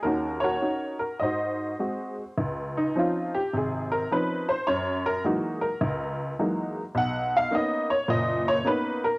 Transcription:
0.03 D#2 D#3 C#4 F#4 A#4
0.40 F#4 A#4 C#5
0.62 C#4 D#4 F#4
0.99 A#4
1.20 G#2 F#4 C5 D#5
1.79 G#3 C4 F#4
2.38 C#2
2.77 D#4
2.96 F3 C4 C#4 D#4 F4
3.35 G4
3.53 G#1 C3 G#4
3.92 A#4
4.11 F3 C4 C#4 D#4 B4
4.49 C5
4.67 F#2 C#5
5.06 A#4
5.24 E3 F#3 G#3 A#3 D#4 F#4
5.61 A#4
5.81 C#2
6.39 E3 F#3 G#3 A#3 D#4
6.95 B1 F#5
7.37 F5
7.51 A#3 B3 C#4 D#4 D#5
7.90 C#5
8.08 F#1 A#2 D#5
8.48 C#5
8.64 A#3 B3 C#4 D#4 B4
9.04 A#4

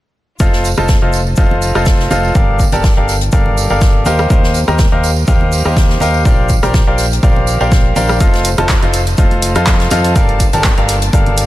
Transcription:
0.40 F1 F4 A4 C5 D#5 F5, kick, tambourine, shaker
0.53 snare
0.64 A5, tambourine, shaker
0.77 F1 F4 A4 C5 D#5 A5, cross-stick, tambourine, high conga
0.88 kick, snare, tambourine, shaker
1.02 F1 F4 A4 C5 D#5 F5
1.12 tambourine, shaker
1.27 tambourine
1.36 F1 F4 A4 C5 D#5 F5, kick, tambourine, shaker
1.51 high conga
1.62 tambourine, shaker
1.75 F1 F4 A4 C5 D#5 F5, cross-stick, tambourine
1.86 kick, snare, tambourine, shaker
2.00 snare
2.11 F1 F4 A4 C5 D#5 F5, tambourine, high conga, shaker
2.24 tambourine
2.35 G1 G4 A4 A#4 D5 F5, kick, tambourine, shaker
2.56 G5, kick, shaker
2.60 tambourine
2.72 G1 G4 A4 A#4 D5 A5, closed hi-hat, tambourine, high conga
2.84 kick, snare, tambourine, shaker
2.94 G1 A#3 G4 A4 A#4 D5 F5
3.08 snare, tambourine, shaker
3.21 closed hi-hat
3.32 G1 G4 A4 A#4 D5 F5, kick, tambourine, shaker
3.46 high conga
3.57 tambourine, shaker
3.70 G1 G4 A4 A#4 D5 F5, tambourine
3.81 kick, snare, shaker
4.05 D#2 G4 A#4 C5 D#5 F5, tambourine, high conga, shaker
4.19 cross-stick, tambourine
4.30 D#2 G4 A#4 C5 D#5 F5, kick, tambourine, shaker
4.44 snare
4.53 D#5, tambourine, shaker
4.68 D#2 G4 A#4 C5 D#5 A#5, cross-stick, tambourine, high conga
4.79 kick, snare, tambourine, shaker
4.92 D#2 G4 A#4 C5 D#5 F5
5.04 tambourine, shaker
5.16 tambourine
5.27 D#2 G4 A#4 C5 D#5 F5, kick, tambourine, shaker
5.41 high conga
5.52 tambourine, shaker
5.65 D#2 G4 A#4 C5 D#5 F5, cross-stick, tambourine
5.77 kick, snare, tambourine, shaker
5.90 snare
6.00 D#2 G4 A#4 C5 D#5 F5, tambourine, high conga, shaker
6.14 tambourine
6.25 A#1 G4 A#4 C5 D5 F5, kick, tambourine, shaker
6.49 kick, tambourine, shaker
6.63 A#1 G4 A#4 C5 D5 A#5, cross-stick, closed hi-hat, tambourine, high conga
6.74 kick, snare, tambourine, shaker
6.87 A#1 G4 A#4 C5 D5 F5
6.98 snare, tambourine, shaker
7.12 D5 A#5, closed hi-hat, tambourine
7.23 A#1 G4 A#4 C5 D5 F5, kick, tambourine, shaker
7.36 high conga
7.47 tambourine, shaker
7.61 A#1 G4 A#4 C5 D5 F5, tambourine
7.72 kick, snare, tambourine, shaker
7.96 A#1 G4 A#4 C5 D5 F5, tambourine, high conga, shaker
8.09 cross-stick, tambourine
8.20 F1 F4 A4 C5 D#5 F5, kick, closed hi-hat, tambourine, shaker
8.34 snare, closed hi-hat
8.45 closed hi-hat, tambourine, shaker
8.58 F1 F4 A4 C5 D#5 A5, cross-stick, closed hi-hat, tambourine, high conga
8.69 kick, snare, clap, closed hi-hat, shaker
8.82 F1 F4 A4 C5 D#5 F5, closed hi-hat
8.93 closed hi-hat, tambourine, shaker
9.07 closed hi-hat, tambourine
9.18 F1 F4 A4 C5 D#5 F5, kick, closed hi-hat, tambourine, shaker
9.31 closed hi-hat, high conga
9.42 closed hi-hat, tambourine, shaker
9.55 F2 F4 A4 C5 D#5 F5, cross-stick, closed hi-hat, tambourine
9.66 kick, snare, clap, closed hi-hat, shaker
9.80 snare, closed hi-hat
9.90 F2 F4 A4 C5 D#5 F5, closed hi-hat, tambourine, high conga, shaker
10.04 closed hi-hat, tambourine
10.15 G1 G4 A4 A#4 D5 F5, kick, closed hi-hat, tambourine, shaker
10.29 closed hi-hat
10.40 kick, closed hi-hat, tambourine, shaker
10.45 A#3
10.53 G1 G4 A4 A#4 D5 A5, closed hi-hat, tambourine, high conga
10.64 kick, snare, clap, closed hi-hat, shaker
10.78 G1 G4 A4 A#4 D5 F5, closed hi-hat
10.88 G5, snare, closed hi-hat, tambourine, shaker
11.02 closed hi-hat, tambourine
11.13 G1 G4 A4 A#4 D5 F5, kick, closed hi-hat, shaker
11.26 closed hi-hat, high conga
11.37 closed hi-hat, tambourine, shaker

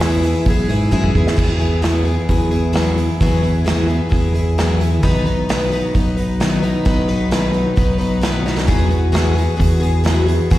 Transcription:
Already playing: E2
0.00 E3 G#3 B3 E4 G#4, snare, open hi-hat
0.23 E4 G#4, open hi-hat
0.27 B3
0.45 B1 G#3 B3 E4, kick, open hi-hat
0.50 G#4
0.68 G#2 B3 E4 G#4, open hi-hat
0.91 F#2 E3 G#3 B3 E4 G#4, kick
1.04 kick
1.15 E2 B3 E4 G#4, kick
1.27 snare
1.37 E2 E3 F#3 B3 E4 G#4, kick, crash
1.60 B3 E4 G#4, open hi-hat
1.82 E3 F#3 B3 E4 G#4, snare, open hi-hat
2.05 B3 E4 G#4, open hi-hat
2.29 E2 F#3 B3 E4 G#4, kick, open hi-hat
2.51 B3 E4 G#4, open hi-hat
2.73 E3 F#3 B3 E4 G#4, snare, open hi-hat
2.97 B3 E4 G#4, open hi-hat
3.21 E2 E3 F#3 B3 E4 G#4, kick, open hi-hat
3.43 B3 E4 G#4, open hi-hat
3.65 E3 F#3 B3 E4 G#4, snare, open hi-hat
3.88 B3 E4 G#4, open hi-hat
4.09 E2 F#3 B3 E4 G#4, kick, open hi-hat
4.34 B3 E4 G#4, open hi-hat
4.58 E3 F#3 B3 E4 G#4, snare, open hi-hat
4.80 B3 E4 G#4, open hi-hat
5.03 B1 B2 D#3 F#3 B3 D#4 B4, kick, open hi-hat
5.25 F#3 B3 D#4 B4, open hi-hat
5.49 B2 D#3 F#3 B3 D#4 B4, snare, open hi-hat
5.72 F#3 B3 D#4 B4, open hi-hat
5.94 B1 F#3 B3 D#4 B4, kick, open hi-hat
6.17 F#3 B3 D#4 B4, open hi-hat
6.40 B2 D#3 F#3 B3 D#4 B4, snare, open hi-hat
6.63 F#3 B3 D#4 B4, open hi-hat
6.85 B1 B2 D#3 F#3 B3 D#4 B4, kick, open hi-hat
7.08 F#3 B3 D#4 B4, open hi-hat
7.31 B2 D#3 F#3 B3 D#4 B4, snare, open hi-hat
7.52 F#3 B3 D#4 B4, open hi-hat
7.76 B1 F#3 B3 D#4 B4, kick, open hi-hat
7.98 F#3 B3 D#4 B4, open hi-hat
8.21 B2 D#3 F#3 B3 D#4 B4, snare, open hi-hat
8.46 F#3 B3 D#4 B4, snare
8.57 snare
8.67 E2 E3 F#3 B3 F#4 G#4, kick, open hi-hat
8.89 B3 F#4 G#4, open hi-hat
9.12 E3 F#3 B3 F#4 G#4, snare, open hi-hat
9.35 B3 F#4 G#4, open hi-hat
9.56 E2 F#3 B3 F#4 G#4, kick, open hi-hat
9.80 B3 F#4 G#4, open hi-hat
10.04 E3 F#3 B3 F#4 G#4, snare, open hi-hat
10.27 B3 F#4 G#4, open hi-hat
10.50 E2 E3 F#3 B3 F#4 G#4, kick, open hi-hat

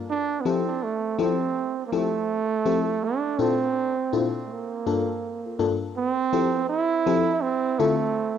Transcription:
0.10 D4
0.41 F3 B3
0.45 C4 E4 G4 A4
0.83 A3
1.18 F3 C4 E4 G4 A4
1.87 A#3
1.92 F3 A3 C4 E4 G4 A4
2.65 F3 C4 E4 G4 A4
3.04 D4
3.39 A#2 C4 D4 E4 F4 A4
4.13 A#2 C4 D4 E4 F4 A4
4.45 A3
4.51 A#3
4.86 G2 A#3 D4 F4 A4
5.46 F4 A4
5.59 G2 A#3 D4 F4 A4
5.97 C4
6.33 F3 C4 E4 G4 A4
6.70 E4
7.06 F3 C4 E4 G4 A4
7.42 C4
7.79 D3 A3 C4 E4 F4 A4

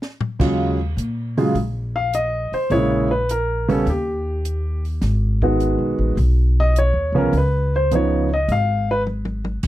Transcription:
0.02 snare
0.21 floor tom
0.39 D#2 C#3 F#3 G#3 F4, kick, crash
0.97 A#2, closed hi-hat
1.37 C#3 F#3 G#3 F4, open hi-hat
1.55 A#1, kick, open hi-hat
1.96 F5
2.13 D#5, closed hi-hat
2.52 C5, muted upright bass stroke, open hi-hat
2.70 A#1 C#3 G#3 A#3 E4 C#5, kick, open hi-hat
3.11 B4
3.29 A#4, closed hi-hat
3.68 C#3 G3 B3 C#4 A4, open hi-hat
3.86 D#2 G4, kick, open hi-hat
4.45 closed hi-hat
4.85 open hi-hat
5.01 G#1, kick, snare, open hi-hat
5.42 D#3 G#3 B3 F#4, kick
5.60 closed hi-hat
5.78 B1
5.99 A1
6.17 B1, kick, open hi-hat
6.60 D#5
6.76 C#5, closed hi-hat
6.94 D#2
7.12 C2 C#3 F3 B3 C#4
7.18 A#4
7.33 C#2, kick, open hi-hat
7.38 B4
7.76 C5
7.91 C#3 F3 B3 D#4 C#5, closed hi-hat
8.34 D#5
8.48 G#1 F5, kick, open hi-hat
8.91 B4
9.07 mid tom
9.25 mid tom
9.45 mid tom
9.63 F#1, kick, crash

